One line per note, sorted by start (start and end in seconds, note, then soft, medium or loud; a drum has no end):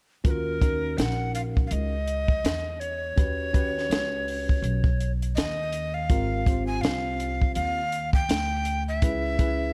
0.24 0.94 D#2 medium
0.24 0.58 C#4 medium
0.24 0.58 F4 medium
0.24 0.58 F#4 medium
0.24 0.58 A#4 medium
0.24 0.32 B4 medium
0.24 kick loud
0.24 closed hi-hat medium
0.31 0.99 A#4 medium
0.61 1.95 C#4 medium
0.61 1.95 D#4 medium
0.61 1.96 F#4 medium
0.61 1.96 A#4 medium
0.61 kick loud
0.61 closed hi-hat medium
0.98 1.67 A#1 medium
0.98 1.03 G5 medium
0.98 snare loud
0.98 closed hi-hat medium
1.02 1.34 F#5 medium
1.35 1.42 F5 medium
1.35 closed hi-hat medium
1.57 kick medium
1.67 1.74 F5 soft
1.67 closed hi-hat medium
1.71 2.41 C#2 medium
1.71 2.81 D#5 loud
2.08 closed hi-hat medium
2.28 kick medium
2.44 3.14 E2 loud
2.44 snare loud
2.44 closed hi-hat loud
2.80 5.11 C#5 loud
2.80 closed hi-hat medium
3.16 3.87 D#2 medium
3.16 3.50 C#4 medium
3.16 3.51 F#4 medium
3.16 3.51 G4 medium
3.16 3.51 B4 medium
3.16 kick loud
3.16 closed hi-hat medium
3.53 4.87 C#4 medium
3.53 4.88 F#4 medium
3.53 4.88 G4 medium
3.53 4.88 B4 medium
3.53 kick loud
3.53 closed hi-hat medium
3.78 snare soft
3.90 4.60 C#2 medium
3.90 snare loud
3.90 closed hi-hat medium
4.28 open hi-hat medium
4.49 kick medium
4.62 5.32 B1 medium
4.62 closed hi-hat medium
4.84 kick medium
5.00 closed hi-hat medium
5.22 closed hi-hat medium
5.35 6.06 D#2 loud
5.35 5.96 D#5 loud
5.35 snare loud
5.35 closed hi-hat loud
5.72 closed hi-hat medium
5.94 6.66 F5 loud
6.10 6.79 G#1 loud
6.10 6.43 C4 medium
6.10 6.43 F4 medium
6.10 6.44 G4 medium
6.10 6.44 A#4 medium
6.10 kick loud
6.10 closed hi-hat medium
6.46 7.80 C4 medium
6.46 7.80 F4 medium
6.46 7.81 G4 medium
6.46 7.81 C5 medium
6.46 kick loud
6.46 closed hi-hat medium
6.67 6.83 G#5 medium
6.81 7.52 C2 medium
6.81 7.55 F5 loud
6.81 snare loud
6.81 closed hi-hat medium
7.20 closed hi-hat medium
7.42 kick medium
7.55 8.26 D#2 medium
7.55 8.10 F5 loud
7.55 closed hi-hat medium
7.92 closed hi-hat medium
8.13 8.84 G5 loud
8.13 kick medium
8.29 8.99 D2 medium
8.29 snare loud
8.29 closed hi-hat loud
8.65 closed hi-hat medium
8.88 9.73 E5 loud
9.02 9.72 C#2 loud
9.02 9.36 C#4 medium
9.02 9.36 E4 medium
9.02 9.36 G#4 medium
9.02 9.37 B4 medium
9.02 kick loud
9.02 closed hi-hat medium
9.39 9.73 C#4 medium
9.39 9.73 E4 medium
9.39 9.73 G#4 medium
9.39 9.73 B4 medium
9.39 kick loud
9.39 closed hi-hat medium